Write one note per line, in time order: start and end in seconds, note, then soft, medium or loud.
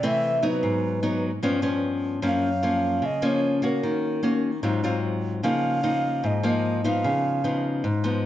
0.00 0.61 C3 medium
0.00 0.40 E3 medium
0.00 0.40 A3 medium
0.00 0.40 C4 medium
0.06 0.47 E5 loud
0.42 1.00 F#3 medium
0.42 1.00 B3 medium
0.42 1.00 D#4 medium
0.42 1.25 B4 medium
0.63 1.41 G#2 medium
1.03 1.30 F#3 medium
1.03 1.30 B3 medium
1.03 1.30 D#4 medium
1.43 2.21 G2 medium
1.43 1.60 F3 medium
1.43 1.60 B3 medium
1.43 1.60 C#4 medium
1.62 2.21 F3 medium
1.62 2.21 B3 medium
1.62 2.21 C#4 medium
2.22 3.01 F#2 medium
2.22 2.48 F3 medium
2.22 2.49 A#3 medium
2.22 2.49 C#4 medium
2.27 3.07 F5 medium
2.63 3.03 F3 soft
2.63 3.03 A#3 medium
2.63 3.03 C#4 medium
3.02 3.80 C#3 medium
3.02 3.27 D#5 medium
3.22 3.59 F3 medium
3.22 3.59 A#3 medium
3.22 3.60 C#4 medium
3.22 3.64 C#5 loud
3.62 4.19 A#3 medium
3.62 4.20 C#4 medium
3.62 4.20 F#4 medium
3.62 3.70 B4 medium
3.69 4.40 A#4 medium
3.83 4.61 D#3 medium
4.23 4.50 A#3 medium
4.23 4.50 C#4 medium
4.23 4.50 F#4 medium
4.63 5.41 G#2 medium
4.63 4.80 F#3 medium
4.63 4.80 C4 medium
4.63 4.80 F4 medium
4.84 5.42 F#3 medium
4.84 5.42 C4 medium
4.84 5.42 F4 medium
5.43 6.21 C#3 medium
5.43 5.80 F3 medium
5.43 5.80 A#3 medium
5.43 5.80 D#4 medium
5.43 6.28 F5 loud
5.83 6.40 F3 medium
5.83 6.40 A#3 medium
5.83 6.40 D#4 medium
6.24 7.01 G#2 medium
6.24 6.45 D#5 medium
6.43 6.80 F3 medium
6.43 6.80 A#3 medium
6.43 6.80 D#4 medium
6.43 6.88 D#5 loud
6.84 7.40 F3 medium
6.84 7.41 B3 medium
6.84 7.41 D#4 medium
6.84 7.65 F5 medium
7.04 7.82 C#3 medium
7.44 7.83 F3 medium
7.44 7.83 B3 medium
7.44 7.84 D#4 medium
7.84 8.26 G#2 medium
8.04 8.26 F3 medium
8.04 8.26 B3 medium
8.04 8.26 D#4 medium